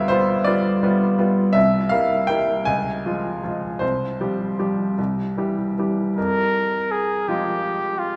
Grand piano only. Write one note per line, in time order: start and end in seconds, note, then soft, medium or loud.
0.00 1.58 D2 medium
0.00 0.10 G3 soft
0.00 0.10 B3 soft
0.00 0.11 F4 soft
0.00 1.53 E5 medium
0.00 1.58 F5 medium
0.08 0.43 G3 soft
0.08 0.43 B3 soft
0.08 0.43 F4 soft
0.08 0.46 C5 medium
0.44 0.79 G3 soft
0.44 0.79 B3 soft
0.44 0.80 F4 soft
0.44 1.54 D5 medium
0.83 1.15 G3 soft
0.83 1.15 B3 soft
0.83 1.16 F4 soft
1.19 1.51 G3 soft
1.19 1.52 B3 soft
1.19 1.52 F4 soft
1.53 1.91 C2 medium
1.53 1.91 E5 medium
1.89 2.25 G3 soft
1.89 2.26 A#3 soft
1.89 2.26 E4 soft
1.89 2.28 F5 medium
2.27 2.63 G3 soft
2.27 2.63 A#3 soft
2.27 2.64 E4 soft
2.27 2.66 G5 medium
2.65 3.04 C#2 soft
2.65 3.81 G#5 medium
3.06 3.40 F3 soft
3.06 3.40 G#3 soft
3.06 3.40 F4 soft
3.43 3.78 F3 soft
3.43 3.78 G#3 soft
3.43 3.79 F4 soft
3.79 4.19 C2 soft
3.79 4.96 C5 medium
4.20 4.55 F3 soft
4.20 4.55 G3 soft
4.20 4.55 G4 soft
4.59 4.94 F3 soft
4.59 4.94 G3 soft
4.59 4.94 G4 soft
4.98 5.36 C2 soft
5.37 5.74 E3 soft
5.37 5.74 G3 soft
5.37 5.74 G4 soft
5.78 6.13 E3 soft
5.78 6.13 G3 soft
5.78 6.14 G4 soft
6.17 7.24 F2 soft
7.28 8.16 F3 soft
7.28 8.16 G#3 soft
7.28 8.16 F4 soft